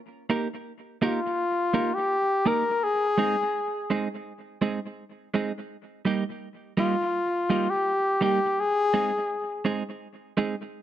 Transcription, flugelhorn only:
1.04 F4
1.94 G4
2.47 A#4
2.84 G#4
6.80 F4
7.70 G4
8.24 G4
8.60 G#4

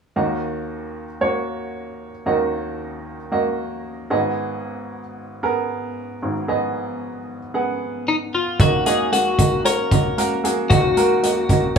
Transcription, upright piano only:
0.16 D#2 D#3 A#3 F#4 D#5
1.21 A#3 F#4 C#5
2.26 D#2 D#3 A#3 F#4 D#5
3.32 A#3 F#4 D#5
4.10 G#1 G#2 B3 G#4 D#5
5.43 B3 G#4 A#4
6.22 G#1 G#2
6.48 B3 G#4 D#5
7.54 B3 G#4 F#5
8.60 D#2 D#3 A#3 F#4 D#5
8.86 A#3 F#4 D#5
9.12 A#3 F#4 G#4
9.38 A#3 F#4 D#5
9.64 A#3 F#4 C#5
9.91 A#3 F#4 D#5
10.18 A#3 F#4 A#4
10.44 A#3 F#4 G#4
10.70 D#2 D#3 A#3 F#4 D#5
10.97 A#3 F#4 A#4
11.23 A#3 F#4 D#5
11.49 A#3 F#4 D#5

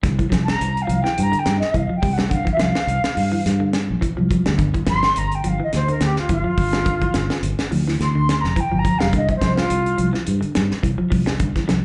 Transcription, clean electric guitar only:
0.03 D3
0.19 E3
0.30 F3
0.87 F3
1.04 E3
1.32 D3
1.74 E3
1.89 F3
2.02 G3
2.18 G3
2.30 D3
2.45 E3
2.57 F3
3.15 muted clean electric guitar stroke
3.32 E3
3.60 D3
4.01 E3
4.17 F3
4.31 F3
4.46 G3
4.58 D3
4.74 E3
4.87 F3
5.44 F3
5.60 E3
5.88 D3
6.30 E3
6.44 F3
6.73 G3
6.85 D3
7.02 E3
7.14 muted clean electric guitar stroke
7.71 F3
7.88 E3
8.15 D3
8.56 E3
8.72 F3
8.85 F3
9.01 G3
9.14 D3
9.29 E3
9.41 F3
9.98 F3
10.13 E3
10.41 D3
10.83 E3
10.98 F3
11.10 F3
11.26 G3
11.40 D3
11.56 E3
11.68 F3

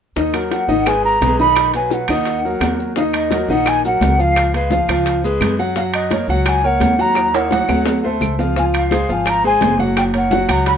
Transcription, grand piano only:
0.16 D#3 D#4 D#5
0.34 F#3 F#4 A#4
0.69 D#3 D#4 D#5
0.86 G#3 G#4 B4
1.22 G#3 G#4 B4
1.39 D#3 D#4 D#5
1.74 F#3 F#4 B4
2.10 D#3 D#4 D#5
2.45 F#3 F#4 A#4
2.62 F#3 F#4 A#4
2.97 D#3 D#4 D#5
3.32 F#3 F#4 A#4
3.50 D#3 D#4 D#5
3.85 F#3 F#4 A#4
4.19 F3 F4 F5
4.54 G#3 G#4 B4
4.72 F3 F4 F5
4.90 F3 F4 F5
5.24 G#3 G#4 B4
5.59 F#3 F#4 F#5
5.76 F#3 F#4 F#5
6.12 A#3 A#4 C#5
6.29 F#3 F#4 F#5
6.64 A#3 A#4 C#5
6.99 F#3 F#4 F#5
7.34 A#3 A#4 C#5
7.51 F#3 F#4 F#5
7.68 F#3 F#4 F#5
8.04 A3 A4 C5
8.39 F3 F4 F5
8.57 F3 F4 F5
8.92 G#3 G#4 C5
9.09 F3 F4 F5
9.44 G#3 G#4 C5
9.79 F#3 F#4 F#5
10.13 A#3 A#4 C#5
10.30 F#3 F#4 F#5
10.48 F#3 F#4 F#5

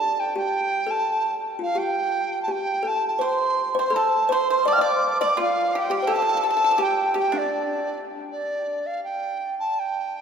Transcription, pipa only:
3.21 C5
3.79 C5
3.96 A4
4.32 C5
4.50 C5
4.68 D5
4.81 D5
5.21 D5
5.37 F4
5.75 G4
5.91 G4
6.07 A4
6.16 A4
6.22 A4
6.29 A4
6.37 A4
6.43 A4
6.50 A4
6.57 A4
6.64 A4
6.71 A4
6.78 G4
7.14 G4
7.32 D4

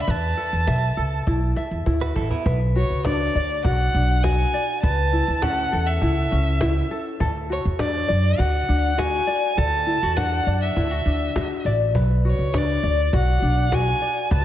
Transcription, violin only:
0.02 B5
0.11 A5
2.77 C#5
3.06 D5
3.65 F#5
4.23 G#5
4.82 A5
5.42 F#5
5.87 E5
7.52 C#5
7.81 D5
8.39 F#5
8.99 G#5
9.58 A5
10.17 F#5
10.62 E5
12.28 C#5
12.57 D5
13.15 F#5
13.74 G#5
14.32 A5

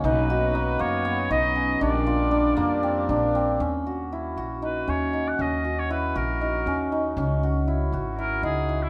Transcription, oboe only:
0.05 B4
0.81 C#5
1.32 D#5
1.83 D5
4.65 B4
4.90 C#5
5.28 F#5
5.41 D#5
5.79 C#5
5.92 B4
6.17 A#4
8.19 A#4
8.44 G#4
8.83 E4

